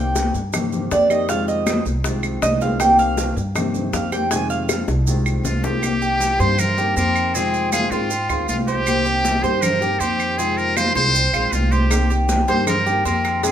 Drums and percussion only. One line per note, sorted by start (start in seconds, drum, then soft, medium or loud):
0.16 high bongo medium
0.16 high conga loud
0.16 maracas medium
0.35 high conga soft
0.35 maracas soft
0.53 high bongo medium
0.53 high conga soft
0.53 low conga medium
0.53 claves medium
0.53 maracas medium
0.72 high conga soft
0.72 low conga medium
0.72 maracas soft
0.91 high bongo medium
0.91 low bongo medium
0.91 high conga soft
0.91 maracas medium
1.10 claves medium
1.10 maracas soft
1.29 high bongo medium
1.29 high conga soft
1.29 maracas medium
1.48 high bongo soft
1.48 high conga soft
1.48 maracas soft
1.67 high bongo medium
1.67 high conga loud
1.67 claves medium
1.67 maracas medium
1.85 high conga soft
1.85 maracas soft
2.04 high bongo medium
2.04 high conga soft
2.04 maracas medium
2.23 high bongo soft
2.23 claves medium
2.23 maracas soft
2.42 high bongo medium
2.42 low bongo medium
2.42 high conga medium
2.42 maracas medium
2.61 high bongo soft
2.61 high conga medium
2.61 maracas soft
2.80 high bongo medium
2.80 high conga soft
2.80 claves medium
2.80 maracas medium
2.98 high conga soft
2.98 maracas soft
3.17 high bongo medium
3.17 high conga loud
3.17 maracas medium
3.36 high conga soft
3.36 maracas soft
3.55 high bongo medium
3.55 high conga soft
3.55 low conga medium
3.55 claves medium
3.55 maracas medium
3.74 high conga soft
3.74 low conga medium
3.74 maracas soft
3.93 high bongo medium
3.93 low bongo medium
3.93 high conga soft
3.93 maracas medium
4.12 high conga medium
4.12 claves medium
4.12 maracas soft
4.31 high bongo medium
4.31 high conga soft
4.31 maracas medium
4.50 high bongo soft
4.50 high conga soft
4.50 maracas soft
4.69 high bongo medium
4.69 high conga medium
4.69 claves medium
4.69 maracas medium
4.88 high bongo medium
4.88 high conga soft
4.88 maracas soft
5.07 high conga soft
5.07 maracas medium
5.26 high conga soft
5.26 claves medium
5.26 maracas soft
5.45 low bongo medium
5.45 high conga medium
5.45 maracas medium
5.63 low bongo medium
5.63 high conga medium
5.63 maracas soft
5.83 high conga soft
5.83 claves medium
5.83 maracas medium
6.01 high conga soft
6.01 maracas soft
6.20 high conga medium
6.20 maracas medium
6.39 high conga soft
6.39 maracas soft
6.58 high conga soft
6.58 low conga medium
6.58 claves medium
6.58 maracas medium
6.77 high conga soft
6.77 maracas soft
6.96 high conga soft
6.96 maracas medium
7.16 claves medium
7.16 maracas soft
7.34 high conga soft
7.34 maracas medium
7.53 high conga soft
7.53 maracas soft
7.72 high conga medium
7.72 claves medium
7.72 maracas medium
7.91 high conga soft
7.91 maracas soft
8.10 high conga soft
8.10 maracas medium
8.29 high conga soft
8.29 claves medium
8.29 maracas soft
8.49 high conga medium
8.49 maracas medium
8.67 high conga medium
8.67 maracas soft
8.87 high conga soft
8.87 claves medium
8.87 maracas medium
9.06 high conga soft
9.06 maracas soft
9.25 high conga medium
9.25 maracas medium
9.44 high conga soft
9.44 maracas soft
9.62 high conga soft
9.62 low conga medium
9.62 claves medium
9.62 maracas medium
9.81 high conga soft
9.81 maracas soft
10.01 high conga soft
10.01 maracas medium
10.20 claves medium
10.20 maracas soft
10.39 high conga soft
10.39 maracas medium
10.58 high conga soft
10.58 maracas soft
10.77 high conga medium
10.77 claves medium
10.77 maracas medium
10.96 high conga soft
10.96 maracas soft
11.15 high conga soft
11.15 maracas medium
11.34 high conga soft
11.34 claves medium
11.34 maracas soft
11.53 high conga medium
11.53 maracas medium
11.71 high conga medium
11.71 maracas soft
11.91 cowbell loud
11.91 claves medium
11.91 maracas medium
12.11 maracas soft
12.29 cowbell medium
12.29 high conga loud
12.29 maracas medium
12.48 cowbell medium
12.48 high conga soft
12.48 maracas soft
12.67 cowbell loud
12.67 high conga soft
12.67 low conga medium
12.67 claves medium
12.67 maracas medium
12.86 high conga soft
12.86 maracas soft
13.05 cowbell medium
13.05 high conga soft
13.05 maracas medium
13.25 cowbell medium
13.25 claves medium
13.25 maracas soft
13.43 cowbell loud
13.43 high conga soft
13.43 maracas medium